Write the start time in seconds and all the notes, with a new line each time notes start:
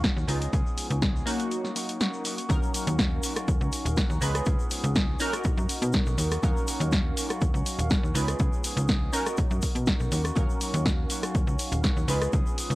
Already playing: D#1 F#3 A#3 C#4 D#4 F5
0.03 A#3 C#4 F#4, kick, snare, closed hi-hat, shaker
0.17 D#2, shaker
0.27 C#2 F3 G#3 B3 C#4 D#4 F4 G#4, open hi-hat, shaker
0.41 B3 C#4 G#4, closed hi-hat, shaker
0.52 C#2 F3 B3 C#4 G#4, kick, closed hi-hat, shaker
0.66 shaker
0.78 open hi-hat, shaker
0.90 C#2 B3 C#4 G#4, closed hi-hat, shaker
1.02 F3 B3 C#4 G#4, kick, snare, closed hi-hat, shaker
1.16 shaker
1.26 F#3 A#3 C#4 D#4 F#4, open hi-hat, shaker
1.40 closed hi-hat, shaker
1.51 closed hi-hat, shaker
1.63 A#3 D#4 F#4, snare, shaker
1.75 F#3 A#3 D#4 F#4, open hi-hat, shaker
1.89 closed hi-hat, shaker
2.00 F#3 A#3 D#4 F#4, snare, closed hi-hat, shaker
2.13 shaker
2.24 F#3 A#3 D#4 F#4, open hi-hat, shaker
2.37 A#3 D#4 F#4, closed hi-hat, shaker
2.49 D#2 F#3 A#3 C#4 D#4 F#4 A#4 F5, kick, closed hi-hat, shaker
2.63 shaker
2.73 A#3 C#4 F#4, open hi-hat, shaker
2.87 D#2, closed hi-hat, shaker
2.98 A#3 C#4 F#4, kick, snare, closed hi-hat, shaker
3.23 A#3 C#4 F#4, open hi-hat, shaker
3.36 C#4 F#4, cross-stick, closed hi-hat, shaker
3.48 D#2, kick, closed hi-hat, shaker
3.60 C#2 C#4 F#4, shaker
3.72 open hi-hat, shaker
3.85 D#1, closed hi-hat, shaker
3.97 A#3 C#4 F#4, kick, snare, closed hi-hat, shaker
4.10 D#2, shaker
4.21 C#2 F3 G#3 B3 C#4 D#4 F4 G#4 B4, open hi-hat, shaker
4.34 B3 C#4 G#4, cross-stick, closed hi-hat, shaker
4.45 C#2 F3 C#4 G#4, kick, closed hi-hat, shaker
4.59 shaker
4.70 F3 B3 C#4 G#4, open hi-hat, shaker
4.84 C#2, closed hi-hat, shaker
4.96 B3 C#4 G#4, kick, snare, closed hi-hat, shaker
5.19 F#3 A#3 C#4 D#4 F#4 A#4, open hi-hat, shaker
5.33 A#3 D#4 F#4, cross-stick, closed hi-hat, shaker
5.44 B1, kick, closed hi-hat, shaker
5.57 F#2 A#3 D#4 F#4, shaker
5.69 open hi-hat, shaker
5.82 B2, closed hi-hat, shaker
5.93 F#3 A#3 D#4 F#4, kick, snare, closed hi-hat, shaker
6.06 B1, shaker
6.17 D#2 F#3 A#3 D#4 F#4, open hi-hat, shaker
6.30 A#3 D#4 F#4, cross-stick, closed hi-hat, shaker
6.42 D#2 F#3 A#3 C#4 D#4 F#4 A#4 F5, kick, closed hi-hat, shaker
6.57 shaker
6.67 A#3 C#4 F#4, open hi-hat, shaker
6.80 D#2, closed hi-hat, shaker
6.91 A#3 C#4 F#4, kick, snare, closed hi-hat, shaker
7.16 A#3 C#4 F#4, open hi-hat, shaker
7.29 C#4 F#4, cross-stick, closed hi-hat, shaker
7.41 D#2, kick, closed hi-hat, shaker
7.53 C#2 C#4 F#4, shaker
7.66 open hi-hat, shaker
7.79 D#1, closed hi-hat, shaker
7.90 A#3 C#4 F#4, kick, snare, closed hi-hat, shaker
8.03 D#2, shaker
8.14 C#2 F3 G#3 B3 C#4 D#4 F4 G#4 B4, open hi-hat, shaker
8.27 B3 C#4 G#4, cross-stick, closed hi-hat, shaker
8.39 C#2 F3 B3 C#4 G#4, kick, closed hi-hat, shaker
8.53 shaker
8.64 F3 B3 C#4 G#4, open hi-hat, shaker
8.77 C#2, closed hi-hat, shaker
8.88 F3 B3 C#4 G#4, kick, snare, closed hi-hat, shaker
9.13 F#3 A#3 C#4 D#4 F#4 A#4, open hi-hat, shaker
9.26 A#3 D#4 F#4, cross-stick, closed hi-hat, shaker
9.37 B1, kick, closed hi-hat, shaker
9.50 F#2 A#3 D#4 F#4, shaker
9.62 kick, open hi-hat, shaker
9.75 B2, closed hi-hat, shaker
9.86 F#3 A#3 D#4 F#4, kick, snare, closed hi-hat, shaker
10.00 B1, shaker
10.11 D#2 F#3 A#3 D#4 F#4, open hi-hat, shaker
10.24 A#3 D#4 F#4, cross-stick, closed hi-hat, shaker
10.35 D#2 F#3 A#3 C#4 D#4 F#4 A#4 F5, kick, closed hi-hat, shaker
10.50 shaker
10.60 A#3 C#4 F#4, open hi-hat, shaker
10.74 D#2, closed hi-hat, shaker
10.85 A#3 C#4 F#4, kick, snare, closed hi-hat, shaker
11.09 A#3 C#4 F#4, open hi-hat, shaker
11.22 C#4 F#4, cross-stick, closed hi-hat, shaker
11.35 D#2, kick, closed hi-hat, shaker
11.47 C#2 C#4 F#4, shaker
11.59 open hi-hat, shaker
11.72 D#1, closed hi-hat, shaker
11.83 A#3 C#4 F#4, kick, snare, closed hi-hat, shaker
11.97 D#2, shaker
12.08 C#2 F3 G#3 B3 C#4 D#4 F4 G#4 B4, open hi-hat, shaker
12.21 B3 C#4 G#4, cross-stick, closed hi-hat, shaker
12.33 C#2 F3 B3 C#4 G#4, kick, closed hi-hat, shaker
12.46 shaker
12.57 F3 B3 C#4 G#4, open hi-hat, shaker
12.70 C#2, closed hi-hat, shaker